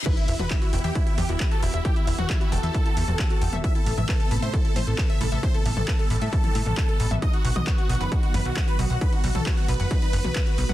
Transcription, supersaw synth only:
X:1
M:4/4
L:1/16
Q:1/4=134
K:Em
V:1 name="Supersaw synth"
B E E B E E E G E E G E z A E E | G E E F E E A8- A z | e A A e A A A c A A c A A e A A | c A A A A A A8- A z |
^d F F d F F F B F F B F F B F F | B F F A F F B8- B z |]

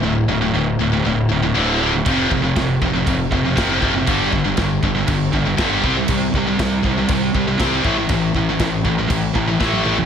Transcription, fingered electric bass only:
X:1
M:4/4
L:1/8
Q:1/4=119
K:Dm
V:1 name="Fingered electric bass" clef=bass
D,,, D,,, D,,, D,,, D,,, D,,, D,,,2 | F,,, F,,, F,,, F,,, F,,, F,,, ^F,,,2 | G,,, G,,, G,,, G,,, G,,, G,,, G,,, C,, | C,, C,, C,, C,, C,, C,, C,, A,,, |
A,,, A,,, A,,, A,,, A,,, A,,, A,,,2 |]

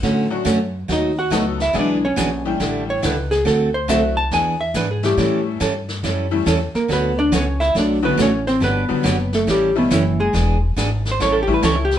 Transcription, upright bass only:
X:1
M:4/4
L:1/8
Q:"Swing" 1/4=140
K:D
V:1 name="Upright bass" clef=bass
A,,2 F,,2 ^D,,2 C,,2 | B,,,2 _B,,,2 A,,,2 C,,2 | D,,2 =C,,2 E,,2 ^G,,2 | A,,2 G,,2 F,,2 E,, z |
D,,2 C,,2 B,,,2 A,,,2 | G,,, z F,,,2 A,,,2 F,,,2 | E,,,2 ^G,,,2 A,,,2 C,,2 |]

